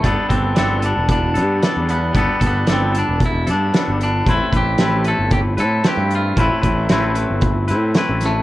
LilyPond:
<<
  \new Staff \with { instrumentName = "Clean electric guitar" } { \time 4/4 \key a \minor \tempo 4 = 114 <g b d' a'>8 <b d' a'>8 <g b d' a'>8 <b d' a'>4 <b d' a'>8 <g b d' a'>4 | <g b d' a'>8 <b d' a'>8 <g b d' a'>8 <b d' a'>4 <b d' a'>8 <g b d' a'>4 | <a, a c' e' b'>8 <c' e' b'>8 <a, a c' e' b'>8 <c' e' b'>4 <c' e' b'>8 <a c' e' b'>4 | <a, a c' e' b'>8 <c' e' b'>8 <a, a c' e' b'>8 <c' e' b'>4 <c' e' b'>8 <a c' e' b'>4 | }
  \new Staff \with { instrumentName = "Clean electric guitar" } { \time 4/4 \key a \minor b8 c'8 c'8 d'8 d'4. b8 | b8 b8 c'8 d'8 e'8 d'4 d'8 | e'8 g'4 a'8 g'8 a'8 g'8 f'8 | e'2. r8 a8 | }
  \new Staff \with { instrumentName = "Picked electric bass" } { \clef bass \time 4/4 \key a \minor g,,16 r16 g,,8 g,,8. e,,8. g,8 r16 e,8. | g,,16 r16 g,,8 g,,8. e,,8. g,8 r16 g,,8. | a,,16 r16 a,,8 a,,8. g,,8. a,8 r16 g,8. | a,,16 r16 a,,8 a,,8. g,,8. a,8 r16 a,,8. | }
  \new DrumStaff \with { instrumentName = "Drums" } \drummode { \time 4/4 <hh bd>8 <hh bd>8 <hh sn>8 hh8 <hh bd>8 hh8 <hh sn>8 hh8 | <hh bd>8 <hh bd>8 <hh sn>8 hh8 <hh bd>8 hh8 <hh sn>8 hh8 | <hh bd>8 <hh bd>8 <hh sn>8 hh8 <hh bd>8 hh8 <hh sn>8 hh8 | <hh bd>8 <hh bd>8 <hh sn>8 hh8 <hh bd>8 hh8 <hh sn>8 <hh sn>8 | }
>>